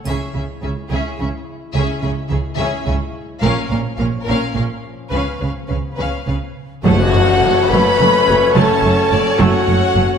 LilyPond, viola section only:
\new Staff \with { instrumentName = "Viola section" } { \time 6/8 \key cis \minor \tempo 4. = 71 << { cis'8 cis'8 cis'8 cis'8 cis'8 r8 | cis'8 cis'8 cis'8 cis'8 cis'8 r8 | cis'8 cis'8 cis'8 cis'8 cis'8 r8 | cis'8 cis'8 cis'8 cis'8 cis'8 r8 |
\key fis \minor a8 a8 a8 a8 a8 a8 | a8 a8 a8 a8 a8 a8 | } \\ { r2. | r2. | r2. | r2. |
cis'2.~ | cis'2. | } >> }